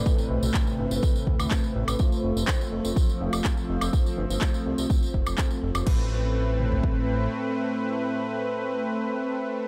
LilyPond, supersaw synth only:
\new Staff \with { instrumentName = "Supersaw synth" } { \time 4/4 \key a \minor \tempo 4 = 124 <a, a c' b'>2. <a, a c' b'>4 | <a f' c''>2~ <a f' c''>8 <a f' f''>4. | <a f' c''>2. <a f' c''>4 | <a c' b'>1~ |
<a c' b'>1 | }